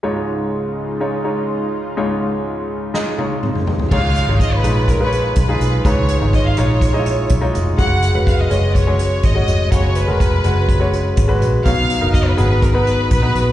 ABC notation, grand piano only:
X:1
M:4/4
L:1/16
Q:1/4=124
K:Dbmix
V:1 name="Grand piano"
[A,EFd]6 z2 [A,EFd] z [A,EFd]4 z2 | [A,EFd]6 z2 [A,EFe] z [A,EFd]4 z2 | [A,EFd]2 z [A,EFd]2 z [A,EFd]2 z [A,EFcd]3 z [A,EFA]2 z | [A,EFc]2 z [A,EFd]2 z [A,EFd]2 z [A,E_F=Fe]3 z [A,EFd]2 z |
[A,DGd]2 z [A,DGc]2 z [A,DGd]2 z [A,DGd]3 z [A,DGd]2 z | [A,DGd]2 z [A,DGB]2 z [A,DGd]2 z [A,DGd]3 z [A,DGc]2 z | [CEGd]2 z [CEGB]2 z [CEGA]2 z [CEGc]3 z [CEGc]2 z |]
V:2 name="Grand piano" clef=bass
[D,,A,,]16 | [D,,A,,]16 | A,,6 z8 z2 | A,,6 z8 z2 |
D,6 z8 z2 | D,6 z8 z2 | [C,G,]6 z8 z2 |]